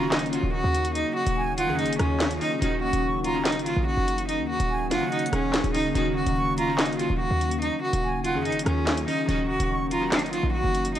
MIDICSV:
0, 0, Header, 1, 7, 480
1, 0, Start_track
1, 0, Key_signature, -6, "minor"
1, 0, Tempo, 416667
1, 1098, Time_signature, 4, 2, 24, 8
1, 12662, End_track
2, 0, Start_track
2, 0, Title_t, "Flute"
2, 0, Program_c, 0, 73
2, 0, Note_on_c, 0, 82, 90
2, 127, Note_off_c, 0, 82, 0
2, 1579, Note_on_c, 0, 80, 91
2, 1806, Note_off_c, 0, 80, 0
2, 1818, Note_on_c, 0, 78, 85
2, 2046, Note_off_c, 0, 78, 0
2, 3500, Note_on_c, 0, 85, 75
2, 3727, Note_off_c, 0, 85, 0
2, 3738, Note_on_c, 0, 82, 80
2, 3966, Note_off_c, 0, 82, 0
2, 5418, Note_on_c, 0, 80, 85
2, 5646, Note_off_c, 0, 80, 0
2, 5660, Note_on_c, 0, 78, 88
2, 6336, Note_off_c, 0, 78, 0
2, 7341, Note_on_c, 0, 85, 91
2, 7567, Note_off_c, 0, 85, 0
2, 7578, Note_on_c, 0, 82, 90
2, 7806, Note_off_c, 0, 82, 0
2, 9260, Note_on_c, 0, 80, 88
2, 9487, Note_off_c, 0, 80, 0
2, 9499, Note_on_c, 0, 78, 84
2, 9727, Note_off_c, 0, 78, 0
2, 11179, Note_on_c, 0, 85, 76
2, 11407, Note_off_c, 0, 85, 0
2, 11419, Note_on_c, 0, 82, 81
2, 11647, Note_off_c, 0, 82, 0
2, 12662, End_track
3, 0, Start_track
3, 0, Title_t, "Cello"
3, 0, Program_c, 1, 42
3, 137, Note_on_c, 1, 63, 75
3, 337, Note_off_c, 1, 63, 0
3, 379, Note_on_c, 1, 65, 72
3, 579, Note_off_c, 1, 65, 0
3, 618, Note_on_c, 1, 66, 88
3, 1069, Note_off_c, 1, 66, 0
3, 1098, Note_on_c, 1, 63, 89
3, 1298, Note_off_c, 1, 63, 0
3, 1339, Note_on_c, 1, 66, 85
3, 1538, Note_off_c, 1, 66, 0
3, 1818, Note_on_c, 1, 65, 83
3, 2018, Note_off_c, 1, 65, 0
3, 2058, Note_on_c, 1, 63, 92
3, 2258, Note_off_c, 1, 63, 0
3, 2298, Note_on_c, 1, 61, 80
3, 2750, Note_off_c, 1, 61, 0
3, 2778, Note_on_c, 1, 63, 93
3, 2978, Note_off_c, 1, 63, 0
3, 3019, Note_on_c, 1, 63, 82
3, 3219, Note_off_c, 1, 63, 0
3, 3257, Note_on_c, 1, 66, 89
3, 3457, Note_off_c, 1, 66, 0
3, 3738, Note_on_c, 1, 65, 86
3, 3938, Note_off_c, 1, 65, 0
3, 3977, Note_on_c, 1, 63, 81
3, 4177, Note_off_c, 1, 63, 0
3, 4214, Note_on_c, 1, 65, 81
3, 4415, Note_off_c, 1, 65, 0
3, 4458, Note_on_c, 1, 66, 88
3, 4909, Note_off_c, 1, 66, 0
3, 4938, Note_on_c, 1, 63, 80
3, 5138, Note_off_c, 1, 63, 0
3, 5181, Note_on_c, 1, 66, 90
3, 5379, Note_off_c, 1, 66, 0
3, 5658, Note_on_c, 1, 65, 93
3, 5858, Note_off_c, 1, 65, 0
3, 5898, Note_on_c, 1, 63, 83
3, 6098, Note_off_c, 1, 63, 0
3, 6139, Note_on_c, 1, 61, 84
3, 6590, Note_off_c, 1, 61, 0
3, 6619, Note_on_c, 1, 63, 92
3, 6818, Note_off_c, 1, 63, 0
3, 6857, Note_on_c, 1, 63, 83
3, 7057, Note_off_c, 1, 63, 0
3, 7101, Note_on_c, 1, 66, 82
3, 7299, Note_off_c, 1, 66, 0
3, 7578, Note_on_c, 1, 65, 83
3, 7778, Note_off_c, 1, 65, 0
3, 7816, Note_on_c, 1, 63, 79
3, 8016, Note_off_c, 1, 63, 0
3, 8058, Note_on_c, 1, 65, 75
3, 8258, Note_off_c, 1, 65, 0
3, 8297, Note_on_c, 1, 66, 89
3, 8749, Note_off_c, 1, 66, 0
3, 8778, Note_on_c, 1, 63, 91
3, 8978, Note_off_c, 1, 63, 0
3, 9017, Note_on_c, 1, 66, 87
3, 9217, Note_off_c, 1, 66, 0
3, 9497, Note_on_c, 1, 65, 86
3, 9697, Note_off_c, 1, 65, 0
3, 9738, Note_on_c, 1, 63, 93
3, 9938, Note_off_c, 1, 63, 0
3, 9979, Note_on_c, 1, 61, 84
3, 10430, Note_off_c, 1, 61, 0
3, 10459, Note_on_c, 1, 63, 95
3, 10658, Note_off_c, 1, 63, 0
3, 10700, Note_on_c, 1, 63, 81
3, 10899, Note_off_c, 1, 63, 0
3, 10937, Note_on_c, 1, 66, 85
3, 11137, Note_off_c, 1, 66, 0
3, 11419, Note_on_c, 1, 65, 87
3, 11618, Note_off_c, 1, 65, 0
3, 11657, Note_on_c, 1, 63, 82
3, 11857, Note_off_c, 1, 63, 0
3, 11895, Note_on_c, 1, 65, 84
3, 12096, Note_off_c, 1, 65, 0
3, 12138, Note_on_c, 1, 66, 93
3, 12589, Note_off_c, 1, 66, 0
3, 12620, Note_on_c, 1, 63, 84
3, 12662, Note_off_c, 1, 63, 0
3, 12662, End_track
4, 0, Start_track
4, 0, Title_t, "Synth keys"
4, 0, Program_c, 2, 88
4, 0, Control_c, 2, 64, 127
4, 0, Note_on_c, 2, 51, 98
4, 0, Note_on_c, 2, 61, 89
4, 0, Note_on_c, 2, 66, 108
4, 5, Note_off_c, 2, 51, 0
4, 5, Note_on_c, 2, 51, 80
4, 19, Note_off_c, 2, 61, 0
4, 19, Note_on_c, 2, 61, 67
4, 33, Note_off_c, 2, 66, 0
4, 33, Note_on_c, 2, 66, 92
4, 301, Note_off_c, 2, 51, 0
4, 308, Note_off_c, 2, 61, 0
4, 316, Note_off_c, 2, 66, 0
4, 366, Note_on_c, 2, 51, 63
4, 380, Note_on_c, 2, 61, 63
4, 394, Note_on_c, 2, 66, 83
4, 1144, Note_off_c, 2, 51, 0
4, 1152, Note_off_c, 2, 61, 0
4, 1159, Note_off_c, 2, 66, 0
4, 1926, Note_on_c, 2, 51, 86
4, 1940, Note_on_c, 2, 61, 73
4, 1954, Note_on_c, 2, 68, 85
4, 2222, Note_off_c, 2, 51, 0
4, 2229, Note_off_c, 2, 61, 0
4, 2236, Note_off_c, 2, 68, 0
4, 2284, Note_on_c, 2, 51, 80
4, 2298, Note_on_c, 2, 61, 75
4, 2313, Note_on_c, 2, 65, 79
4, 2677, Note_off_c, 2, 51, 0
4, 2685, Note_off_c, 2, 61, 0
4, 2692, Note_off_c, 2, 65, 0
4, 2763, Note_on_c, 2, 51, 76
4, 2777, Note_on_c, 2, 61, 73
4, 2792, Note_on_c, 2, 63, 86
4, 2964, Note_off_c, 2, 51, 0
4, 2971, Note_off_c, 2, 61, 0
4, 2978, Note_off_c, 2, 63, 0
4, 3004, Note_on_c, 2, 51, 99
4, 3018, Note_on_c, 2, 61, 85
4, 3032, Control_c, 2, 64, 0
4, 3033, Note_on_c, 2, 66, 111
4, 3245, Control_c, 2, 64, 127
4, 3687, Note_off_c, 2, 51, 0
4, 3694, Note_off_c, 2, 61, 0
4, 3701, Note_off_c, 2, 66, 0
4, 3843, Note_on_c, 2, 51, 76
4, 3857, Note_on_c, 2, 61, 73
4, 3871, Note_on_c, 2, 66, 84
4, 4140, Note_off_c, 2, 51, 0
4, 4147, Note_off_c, 2, 61, 0
4, 4154, Note_off_c, 2, 66, 0
4, 4204, Note_on_c, 2, 51, 66
4, 4218, Note_on_c, 2, 61, 62
4, 4233, Note_on_c, 2, 66, 79
4, 4984, Note_off_c, 2, 51, 0
4, 4991, Note_off_c, 2, 61, 0
4, 4998, Note_off_c, 2, 66, 0
4, 5766, Note_on_c, 2, 51, 81
4, 5780, Note_on_c, 2, 61, 70
4, 5794, Note_on_c, 2, 66, 88
4, 6062, Note_off_c, 2, 51, 0
4, 6069, Note_off_c, 2, 61, 0
4, 6076, Note_off_c, 2, 66, 0
4, 6126, Note_on_c, 2, 51, 72
4, 6140, Note_on_c, 2, 61, 70
4, 6155, Note_on_c, 2, 68, 82
4, 6518, Note_off_c, 2, 51, 0
4, 6525, Note_off_c, 2, 61, 0
4, 6533, Note_off_c, 2, 68, 0
4, 6606, Note_on_c, 2, 51, 77
4, 6620, Note_on_c, 2, 61, 66
4, 6634, Note_on_c, 2, 63, 80
4, 6805, Note_off_c, 2, 51, 0
4, 6812, Note_off_c, 2, 61, 0
4, 6819, Note_off_c, 2, 63, 0
4, 6845, Note_on_c, 2, 51, 100
4, 6860, Note_on_c, 2, 61, 89
4, 6874, Note_on_c, 2, 66, 107
4, 6875, Control_c, 2, 64, 0
4, 7041, Control_c, 2, 64, 127
4, 7528, Note_off_c, 2, 51, 0
4, 7535, Note_off_c, 2, 61, 0
4, 7542, Note_off_c, 2, 66, 0
4, 7685, Note_on_c, 2, 51, 79
4, 7699, Note_on_c, 2, 61, 67
4, 7714, Note_on_c, 2, 66, 91
4, 7981, Note_off_c, 2, 51, 0
4, 7989, Note_off_c, 2, 61, 0
4, 7996, Note_off_c, 2, 66, 0
4, 8045, Note_on_c, 2, 51, 65
4, 8060, Note_on_c, 2, 61, 65
4, 8074, Note_on_c, 2, 66, 84
4, 8824, Note_off_c, 2, 51, 0
4, 8831, Note_off_c, 2, 61, 0
4, 8839, Note_off_c, 2, 66, 0
4, 9606, Note_on_c, 2, 51, 84
4, 9621, Note_on_c, 2, 61, 71
4, 9635, Note_on_c, 2, 68, 89
4, 9902, Note_off_c, 2, 51, 0
4, 9909, Note_off_c, 2, 61, 0
4, 9916, Note_off_c, 2, 68, 0
4, 9964, Note_on_c, 2, 51, 78
4, 9979, Note_on_c, 2, 61, 74
4, 9993, Note_on_c, 2, 65, 81
4, 10358, Note_off_c, 2, 51, 0
4, 10365, Note_off_c, 2, 61, 0
4, 10372, Note_off_c, 2, 65, 0
4, 10444, Note_on_c, 2, 51, 77
4, 10458, Note_on_c, 2, 61, 72
4, 10473, Note_on_c, 2, 63, 87
4, 10644, Note_off_c, 2, 51, 0
4, 10651, Note_off_c, 2, 61, 0
4, 10659, Note_off_c, 2, 63, 0
4, 10685, Note_on_c, 2, 51, 101
4, 10699, Note_on_c, 2, 61, 86
4, 10713, Note_on_c, 2, 66, 114
4, 10716, Control_c, 2, 64, 0
4, 10925, Control_c, 2, 64, 127
4, 11367, Note_off_c, 2, 51, 0
4, 11375, Note_off_c, 2, 61, 0
4, 11382, Note_off_c, 2, 66, 0
4, 11523, Note_on_c, 2, 51, 77
4, 11538, Note_on_c, 2, 61, 73
4, 11552, Note_on_c, 2, 66, 86
4, 11820, Note_off_c, 2, 51, 0
4, 11828, Note_off_c, 2, 61, 0
4, 11835, Note_off_c, 2, 66, 0
4, 11885, Note_on_c, 2, 51, 66
4, 11899, Note_on_c, 2, 61, 66
4, 11913, Note_on_c, 2, 66, 77
4, 12662, Note_off_c, 2, 51, 0
4, 12662, Note_off_c, 2, 61, 0
4, 12662, Note_off_c, 2, 66, 0
4, 12662, End_track
5, 0, Start_track
5, 0, Title_t, "Ambient pad"
5, 0, Program_c, 3, 92
5, 0, Note_on_c, 3, 49, 86
5, 0, Note_on_c, 3, 54, 79
5, 0, Note_on_c, 3, 58, 77
5, 0, Note_on_c, 3, 63, 97
5, 2980, Note_off_c, 3, 49, 0
5, 3019, Note_on_c, 3, 49, 86
5, 10653, Note_off_c, 3, 54, 0
5, 10653, Note_off_c, 3, 58, 0
5, 10653, Note_off_c, 3, 63, 0
5, 10699, Note_on_c, 3, 58, 77
5, 10699, Note_on_c, 3, 63, 94
5, 10700, Note_on_c, 3, 54, 78
5, 12662, Note_off_c, 3, 49, 0
5, 12662, Note_off_c, 3, 54, 0
5, 12662, Note_off_c, 3, 58, 0
5, 12662, Note_off_c, 3, 63, 0
5, 12662, End_track
6, 0, Start_track
6, 0, Title_t, "808-style bass"
6, 0, Program_c, 4, 38
6, 18, Note_on_c, 4, 25, 101
6, 474, Note_off_c, 4, 25, 0
6, 499, Note_on_c, 4, 27, 104
6, 729, Note_off_c, 4, 27, 0
6, 739, Note_on_c, 4, 39, 104
6, 1199, Note_off_c, 4, 39, 0
6, 1459, Note_on_c, 4, 27, 109
6, 1938, Note_on_c, 4, 42, 106
6, 1956, Note_off_c, 4, 27, 0
6, 2118, Note_on_c, 4, 27, 105
6, 2135, Note_off_c, 4, 42, 0
6, 2289, Note_off_c, 4, 27, 0
6, 2298, Note_on_c, 4, 39, 103
6, 2759, Note_off_c, 4, 39, 0
6, 3018, Note_on_c, 4, 27, 112
6, 3364, Note_off_c, 4, 27, 0
6, 3378, Note_on_c, 4, 27, 106
6, 4098, Note_on_c, 4, 30, 98
6, 4115, Note_off_c, 4, 27, 0
6, 4218, Note_on_c, 4, 27, 100
6, 4235, Note_off_c, 4, 30, 0
6, 4332, Note_off_c, 4, 27, 0
6, 4337, Note_on_c, 4, 34, 106
6, 4568, Note_off_c, 4, 34, 0
6, 4577, Note_on_c, 4, 30, 108
6, 5058, Note_on_c, 4, 39, 99
6, 5075, Note_off_c, 4, 30, 0
6, 5286, Note_off_c, 4, 39, 0
6, 5298, Note_on_c, 4, 27, 110
6, 5657, Note_on_c, 4, 29, 99
6, 5675, Note_off_c, 4, 27, 0
6, 5772, Note_off_c, 4, 29, 0
6, 6137, Note_on_c, 4, 27, 99
6, 6483, Note_off_c, 4, 27, 0
6, 6497, Note_on_c, 4, 27, 104
6, 6843, Note_off_c, 4, 27, 0
6, 6857, Note_on_c, 4, 27, 107
6, 7203, Note_off_c, 4, 27, 0
6, 7218, Note_on_c, 4, 27, 107
6, 7698, Note_on_c, 4, 25, 102
6, 7715, Note_off_c, 4, 27, 0
6, 8154, Note_off_c, 4, 25, 0
6, 8178, Note_on_c, 4, 27, 100
6, 8408, Note_off_c, 4, 27, 0
6, 8418, Note_on_c, 4, 39, 105
6, 8879, Note_off_c, 4, 39, 0
6, 9138, Note_on_c, 4, 27, 109
6, 9618, Note_on_c, 4, 42, 106
6, 9636, Note_off_c, 4, 27, 0
6, 9798, Note_on_c, 4, 27, 97
6, 9815, Note_off_c, 4, 42, 0
6, 9969, Note_off_c, 4, 27, 0
6, 9977, Note_on_c, 4, 39, 104
6, 10439, Note_off_c, 4, 39, 0
6, 10698, Note_on_c, 4, 27, 113
6, 11044, Note_off_c, 4, 27, 0
6, 11058, Note_on_c, 4, 27, 107
6, 11778, Note_on_c, 4, 30, 97
6, 11795, Note_off_c, 4, 27, 0
6, 11898, Note_on_c, 4, 27, 100
6, 11916, Note_off_c, 4, 30, 0
6, 12012, Note_off_c, 4, 27, 0
6, 12019, Note_on_c, 4, 34, 104
6, 12249, Note_off_c, 4, 34, 0
6, 12259, Note_on_c, 4, 30, 108
6, 12662, Note_off_c, 4, 30, 0
6, 12662, End_track
7, 0, Start_track
7, 0, Title_t, "Drums"
7, 138, Note_on_c, 9, 38, 116
7, 139, Note_on_c, 9, 39, 94
7, 139, Note_on_c, 9, 42, 85
7, 219, Note_off_c, 9, 42, 0
7, 219, Note_on_c, 9, 42, 68
7, 254, Note_off_c, 9, 38, 0
7, 254, Note_off_c, 9, 39, 0
7, 298, Note_off_c, 9, 42, 0
7, 298, Note_on_c, 9, 42, 47
7, 378, Note_off_c, 9, 42, 0
7, 378, Note_on_c, 9, 42, 73
7, 493, Note_off_c, 9, 42, 0
7, 858, Note_on_c, 9, 42, 83
7, 974, Note_off_c, 9, 42, 0
7, 976, Note_on_c, 9, 42, 87
7, 1091, Note_off_c, 9, 42, 0
7, 1098, Note_on_c, 9, 42, 88
7, 1213, Note_off_c, 9, 42, 0
7, 1457, Note_on_c, 9, 42, 81
7, 1572, Note_off_c, 9, 42, 0
7, 1818, Note_on_c, 9, 42, 79
7, 1933, Note_off_c, 9, 42, 0
7, 2058, Note_on_c, 9, 42, 50
7, 2138, Note_off_c, 9, 42, 0
7, 2138, Note_on_c, 9, 42, 68
7, 2218, Note_off_c, 9, 42, 0
7, 2218, Note_on_c, 9, 42, 82
7, 2297, Note_off_c, 9, 42, 0
7, 2297, Note_on_c, 9, 42, 73
7, 2298, Note_on_c, 9, 37, 99
7, 2412, Note_off_c, 9, 42, 0
7, 2413, Note_off_c, 9, 37, 0
7, 2537, Note_on_c, 9, 42, 79
7, 2538, Note_on_c, 9, 38, 118
7, 2539, Note_on_c, 9, 39, 95
7, 2652, Note_off_c, 9, 42, 0
7, 2653, Note_off_c, 9, 38, 0
7, 2654, Note_off_c, 9, 39, 0
7, 2658, Note_on_c, 9, 42, 80
7, 2773, Note_off_c, 9, 42, 0
7, 2778, Note_on_c, 9, 46, 62
7, 2893, Note_off_c, 9, 46, 0
7, 3018, Note_on_c, 9, 42, 84
7, 3133, Note_off_c, 9, 42, 0
7, 3377, Note_on_c, 9, 42, 83
7, 3492, Note_off_c, 9, 42, 0
7, 3737, Note_on_c, 9, 42, 79
7, 3852, Note_off_c, 9, 42, 0
7, 3978, Note_on_c, 9, 38, 121
7, 3978, Note_on_c, 9, 42, 83
7, 3979, Note_on_c, 9, 39, 92
7, 4058, Note_off_c, 9, 42, 0
7, 4058, Note_on_c, 9, 42, 67
7, 4093, Note_off_c, 9, 38, 0
7, 4094, Note_off_c, 9, 39, 0
7, 4139, Note_off_c, 9, 42, 0
7, 4139, Note_on_c, 9, 42, 47
7, 4218, Note_off_c, 9, 42, 0
7, 4218, Note_on_c, 9, 42, 74
7, 4333, Note_off_c, 9, 42, 0
7, 4699, Note_on_c, 9, 42, 87
7, 4814, Note_off_c, 9, 42, 0
7, 4816, Note_on_c, 9, 42, 88
7, 4931, Note_off_c, 9, 42, 0
7, 4939, Note_on_c, 9, 42, 87
7, 5054, Note_off_c, 9, 42, 0
7, 5298, Note_on_c, 9, 42, 82
7, 5413, Note_off_c, 9, 42, 0
7, 5658, Note_on_c, 9, 38, 73
7, 5658, Note_on_c, 9, 42, 80
7, 5773, Note_off_c, 9, 38, 0
7, 5773, Note_off_c, 9, 42, 0
7, 5899, Note_on_c, 9, 42, 49
7, 5979, Note_off_c, 9, 42, 0
7, 5979, Note_on_c, 9, 42, 70
7, 6058, Note_off_c, 9, 42, 0
7, 6058, Note_on_c, 9, 42, 83
7, 6138, Note_off_c, 9, 42, 0
7, 6138, Note_on_c, 9, 37, 97
7, 6138, Note_on_c, 9, 42, 75
7, 6253, Note_off_c, 9, 42, 0
7, 6254, Note_off_c, 9, 37, 0
7, 6377, Note_on_c, 9, 42, 80
7, 6379, Note_on_c, 9, 38, 115
7, 6380, Note_on_c, 9, 39, 96
7, 6492, Note_off_c, 9, 42, 0
7, 6494, Note_off_c, 9, 38, 0
7, 6495, Note_off_c, 9, 39, 0
7, 6498, Note_on_c, 9, 42, 70
7, 6613, Note_off_c, 9, 42, 0
7, 6618, Note_on_c, 9, 42, 69
7, 6619, Note_on_c, 9, 46, 62
7, 6733, Note_off_c, 9, 42, 0
7, 6734, Note_off_c, 9, 46, 0
7, 6858, Note_on_c, 9, 42, 87
7, 6973, Note_off_c, 9, 42, 0
7, 7217, Note_on_c, 9, 42, 81
7, 7332, Note_off_c, 9, 42, 0
7, 7577, Note_on_c, 9, 42, 78
7, 7693, Note_off_c, 9, 42, 0
7, 7817, Note_on_c, 9, 38, 117
7, 7817, Note_on_c, 9, 42, 84
7, 7818, Note_on_c, 9, 39, 95
7, 7898, Note_off_c, 9, 42, 0
7, 7898, Note_on_c, 9, 42, 68
7, 7933, Note_off_c, 9, 38, 0
7, 7933, Note_off_c, 9, 39, 0
7, 7978, Note_off_c, 9, 42, 0
7, 7978, Note_on_c, 9, 42, 48
7, 8057, Note_off_c, 9, 42, 0
7, 8057, Note_on_c, 9, 42, 73
7, 8172, Note_off_c, 9, 42, 0
7, 8538, Note_on_c, 9, 42, 86
7, 8653, Note_off_c, 9, 42, 0
7, 8656, Note_on_c, 9, 42, 86
7, 8771, Note_off_c, 9, 42, 0
7, 8778, Note_on_c, 9, 42, 86
7, 8893, Note_off_c, 9, 42, 0
7, 9137, Note_on_c, 9, 42, 81
7, 9253, Note_off_c, 9, 42, 0
7, 9498, Note_on_c, 9, 42, 80
7, 9613, Note_off_c, 9, 42, 0
7, 9738, Note_on_c, 9, 42, 52
7, 9818, Note_off_c, 9, 42, 0
7, 9818, Note_on_c, 9, 42, 67
7, 9898, Note_off_c, 9, 42, 0
7, 9898, Note_on_c, 9, 42, 81
7, 9978, Note_off_c, 9, 42, 0
7, 9978, Note_on_c, 9, 42, 74
7, 9979, Note_on_c, 9, 37, 100
7, 10093, Note_off_c, 9, 42, 0
7, 10094, Note_off_c, 9, 37, 0
7, 10217, Note_on_c, 9, 42, 79
7, 10219, Note_on_c, 9, 38, 118
7, 10219, Note_on_c, 9, 39, 96
7, 10332, Note_off_c, 9, 42, 0
7, 10334, Note_off_c, 9, 38, 0
7, 10335, Note_off_c, 9, 39, 0
7, 10338, Note_on_c, 9, 42, 82
7, 10454, Note_off_c, 9, 42, 0
7, 10459, Note_on_c, 9, 46, 60
7, 10574, Note_off_c, 9, 46, 0
7, 10699, Note_on_c, 9, 42, 87
7, 10814, Note_off_c, 9, 42, 0
7, 11058, Note_on_c, 9, 42, 82
7, 11173, Note_off_c, 9, 42, 0
7, 11418, Note_on_c, 9, 42, 78
7, 11533, Note_off_c, 9, 42, 0
7, 11659, Note_on_c, 9, 38, 117
7, 11659, Note_on_c, 9, 42, 81
7, 11660, Note_on_c, 9, 39, 97
7, 11739, Note_off_c, 9, 42, 0
7, 11739, Note_on_c, 9, 42, 67
7, 11775, Note_off_c, 9, 38, 0
7, 11775, Note_off_c, 9, 39, 0
7, 11819, Note_off_c, 9, 42, 0
7, 11819, Note_on_c, 9, 42, 48
7, 11898, Note_off_c, 9, 42, 0
7, 11898, Note_on_c, 9, 42, 74
7, 12014, Note_off_c, 9, 42, 0
7, 12379, Note_on_c, 9, 42, 85
7, 12494, Note_off_c, 9, 42, 0
7, 12497, Note_on_c, 9, 42, 88
7, 12612, Note_off_c, 9, 42, 0
7, 12619, Note_on_c, 9, 42, 87
7, 12662, Note_off_c, 9, 42, 0
7, 12662, End_track
0, 0, End_of_file